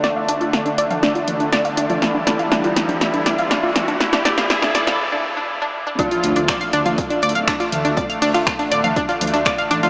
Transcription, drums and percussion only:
0.04 snare, closed hi-hat
0.29 closed hi-hat
0.41 closed hi-hat
0.53 snare, closed hi-hat
0.66 closed hi-hat
0.78 closed hi-hat
0.91 closed hi-hat, mid tom
1.03 snare, closed hi-hat
1.15 closed hi-hat
1.28 closed hi-hat, mid tom
1.40 closed hi-hat
1.52 snare, closed hi-hat
1.65 closed hi-hat
1.77 closed hi-hat
1.90 closed hi-hat, mid tom
2.02 snare, closed hi-hat
2.27 snare, closed hi-hat
2.39 closed hi-hat
2.52 snare, closed hi-hat
2.64 closed hi-hat
2.76 snare, closed hi-hat
2.89 closed hi-hat, mid tom
3.01 snare, closed hi-hat
3.14 closed hi-hat
3.26 snare, closed hi-hat
3.38 closed hi-hat
3.51 snare, closed hi-hat
3.76 snare, closed hi-hat, mid tom
3.88 closed hi-hat
4.00 snare, closed hi-hat
4.13 snare
4.25 snare, closed hi-hat
4.38 snare, closed hi-hat
4.50 snare, closed hi-hat
4.62 snare, closed hi-hat
4.75 snare, closed hi-hat
4.87 snare, closed hi-hat, mid tom
5.99 kick, closed hi-hat
6.11 closed hi-hat
6.23 snare, closed hi-hat
6.36 closed hi-hat
6.48 finger snap, kick, snare, closed hi-hat
6.61 closed hi-hat
6.73 closed hi-hat
6.86 closed hi-hat, mid tom
6.98 kick, closed hi-hat
7.10 closed hi-hat
7.22 closed hi-hat
7.29 closed hi-hat
7.35 closed hi-hat
7.48 finger snap, kick, snare, closed hi-hat
7.60 snare, closed hi-hat
7.72 closed hi-hat, mid tom
7.85 closed hi-hat
7.97 kick, closed hi-hat
8.10 closed hi-hat
8.22 closed hi-hat, open hi-hat
8.34 finger snap, closed hi-hat
8.47 finger snap, kick, snare, closed hi-hat
8.59 closed hi-hat
8.72 closed hi-hat
8.84 closed hi-hat, mid tom
8.96 kick, closed hi-hat
9.09 snare, closed hi-hat
9.21 closed hi-hat, mid tom
9.27 closed hi-hat
9.34 snare, closed hi-hat
9.45 finger snap, kick, snare, closed hi-hat
9.58 snare, closed hi-hat
9.71 closed hi-hat
9.83 closed hi-hat, mid tom

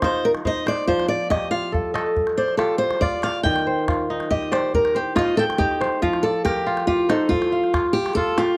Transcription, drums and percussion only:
0.02 calabash thump, calabash click
0.35 calabash click
0.45 calabash thump
0.67 calabash click
0.88 calabash thump
1.00 calabash click
1.31 calabash thump, calabash click
1.42 calabash click
1.74 calabash thump
1.96 calabash click
2.17 calabash thump
2.27 calabash click
2.48 calabash click
2.59 calabash click
2.91 calabash click
3.02 calabash thump
3.23 calabash click
3.45 calabash thump
3.56 calabash click
3.88 calabash thump, calabash click
4.20 calabash click
4.31 calabash thump, calabash click
4.42 calabash click
4.53 calabash click
4.64 calabash click
4.74 calabash thump, calabash click
4.85 calabash click
4.96 calabash click
5.17 calabash thump, calabash click
5.39 calabash click
5.50 calabash click
5.60 calabash thump
5.71 calabash click
5.81 calabash click
5.92 calabash click
6.03 calabash thump
6.13 calabash click
6.46 calabash thump, calabash click
6.57 calabash click
6.77 calabash click
6.88 calabash thump
7.10 calabash click
7.31 calabash thump
7.42 calabash click
7.64 calabash click
7.74 calabash thump, calabash click
8.06 calabash click
8.17 calabash thump
8.38 calabash click

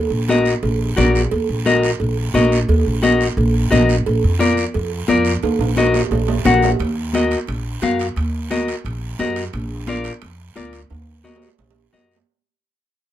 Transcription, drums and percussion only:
0.28 cowbell, high conga, short guiro
0.45 short guiro
0.63 cowbell, high conga, long guiro
0.97 cowbell, high conga, low conga, short guiro
1.15 short guiro
1.31 cowbell, high conga, long guiro
1.66 cowbell, high conga, short guiro
1.83 short guiro
2.00 cowbell, high conga, long guiro
2.34 cowbell, high conga, short guiro
2.52 short guiro
2.69 cowbell, high conga, long guiro
3.03 cowbell, high conga, short guiro
3.21 short guiro
3.37 cowbell, high conga, long guiro
3.72 cowbell, high conga, low conga, short guiro
3.89 short guiro
4.06 cowbell, high conga, long guiro
4.41 cowbell, high conga, short guiro
4.57 short guiro
4.74 cowbell, high conga, long guiro
5.08 cowbell, high conga, short guiro
5.25 short guiro
5.43 cowbell, high conga, high timbale, long guiro
5.61 high timbale
5.76 cowbell, high conga, high timbale, short guiro
5.94 low timbale, short guiro
6.11 cowbell, high conga, low timbale, long guiro
6.28 low timbale
6.45 cowbell, high conga, low conga, low timbale, short guiro
6.62 low timbale, short guiro
6.79 high conga, high timbale, long guiro
7.13 high conga, high timbale, short guiro
7.31 high timbale, short guiro
7.47 high conga, high timbale, long guiro
7.82 high conga, high timbale, short guiro
7.99 high timbale, short guiro
8.16 high conga, high timbale, long guiro
8.51 high conga, high timbale, short guiro
8.68 high timbale, short guiro
8.85 high conga, high timbale, long guiro
9.19 high conga, high timbale, low timbale, short guiro
9.36 high timbale, short guiro
9.53 high conga, high timbale, long guiro
9.87 high conga, high timbale, short guiro
10.04 high timbale, short guiro
10.22 high conga, high timbale, long guiro
10.56 high conga, high timbale, short guiro
10.73 high timbale, short guiro
10.90 high conga, high timbale, long guiro
11.02 high timbale
11.25 high conga, low timbale, short guiro
11.36 low timbale
11.42 short guiro
11.47 low timbale
11.58 high conga, low timbale, long guiro
11.71 low timbale
11.93 high conga, low timbale, short guiro
12.11 short guiro
12.16 low timbale

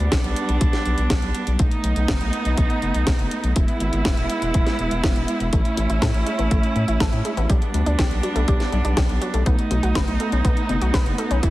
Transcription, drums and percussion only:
0.12 kick, snare, closed hi-hat
0.24 closed hi-hat
0.36 closed hi-hat
0.49 closed hi-hat
0.61 kick, closed hi-hat
0.73 snare, closed hi-hat
0.85 closed hi-hat
0.98 closed hi-hat
1.10 kick, snare, closed hi-hat
1.22 closed hi-hat
1.35 closed hi-hat
1.47 closed hi-hat
1.59 kick, closed hi-hat
1.71 closed hi-hat
1.84 closed hi-hat
1.96 closed hi-hat
2.08 kick, snare, closed hi-hat
2.21 closed hi-hat
2.33 closed hi-hat
2.45 closed hi-hat
2.58 kick, closed hi-hat
2.70 closed hi-hat
2.82 closed hi-hat
2.94 closed hi-hat
3.07 kick, snare, closed hi-hat
3.19 closed hi-hat
3.31 closed hi-hat
3.44 closed hi-hat
3.56 kick, closed hi-hat
3.68 closed hi-hat
3.80 closed hi-hat
3.93 closed hi-hat
4.05 kick, snare, closed hi-hat
4.17 closed hi-hat
4.30 closed hi-hat
4.42 closed hi-hat
4.54 kick, closed hi-hat
4.67 snare, closed hi-hat
4.79 closed hi-hat
4.91 closed hi-hat
5.04 kick, snare, closed hi-hat
5.16 closed hi-hat
5.28 closed hi-hat
5.40 closed hi-hat
5.53 kick, closed hi-hat
5.65 closed hi-hat
5.77 closed hi-hat
5.90 closed hi-hat
6.02 kick, snare, closed hi-hat
6.14 closed hi-hat
6.27 closed hi-hat
6.39 closed hi-hat
6.51 kick, closed hi-hat
6.63 closed hi-hat
6.76 closed hi-hat
6.88 closed hi-hat
7.00 kick, snare, closed hi-hat
7.13 closed hi-hat
7.25 closed hi-hat
7.37 closed hi-hat
7.50 kick, closed hi-hat
7.62 closed hi-hat
7.74 closed hi-hat
7.86 closed hi-hat
7.99 kick, snare, closed hi-hat
8.11 closed hi-hat
8.23 closed hi-hat
8.36 closed hi-hat
8.48 kick, closed hi-hat
8.60 snare, closed hi-hat
8.72 closed hi-hat
8.85 closed hi-hat
8.97 kick, snare, closed hi-hat
9.09 closed hi-hat
9.22 closed hi-hat
9.34 closed hi-hat
9.46 kick, closed hi-hat
9.59 closed hi-hat
9.71 closed hi-hat
9.83 closed hi-hat
9.95 kick, snare, closed hi-hat
10.08 closed hi-hat
10.20 closed hi-hat
10.32 closed hi-hat
10.45 kick, closed hi-hat
10.57 closed hi-hat
10.69 closed hi-hat
10.81 closed hi-hat
10.94 kick, snare, closed hi-hat
11.06 closed hi-hat
11.18 closed hi-hat
11.31 closed hi-hat
11.43 kick, closed hi-hat

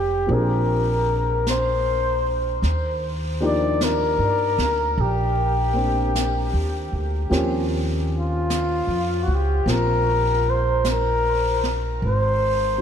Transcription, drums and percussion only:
0.30 brush sweep
1.47 brush sweep, snare, hi-hat pedal
2.63 brush sweep, snare
3.81 brush sweep, snare, hi-hat pedal
4.58 snare
4.98 brush sweep
6.15 brush sweep, snare, hi-hat pedal
7.32 brush sweep, snare
8.50 brush sweep, snare, hi-hat pedal
9.67 brush sweep, snare
10.85 brush sweep, snare, hi-hat pedal
11.64 snare
12.03 brush sweep

